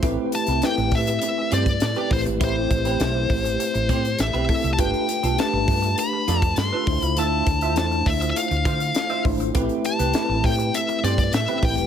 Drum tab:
HH |x-xxxxoxx-xxxxox|x-xxx-oxxxxxxxox|xxxxx-oxx-xxx-ox|x-xxxxoxxxxxxxox|
SD |----o-o---o-o---|----o-----o-o---|----o-o---o-o---|----o-----o-o---|
BD |o-----o----o--o-|o-o---o---o---o-|o-----o----o--o-|--o---o---o---o-|

HH |xxxxx-oxxxxxxxox|
SD |----o-o---o-o---|
BD |o-----o----o--o-|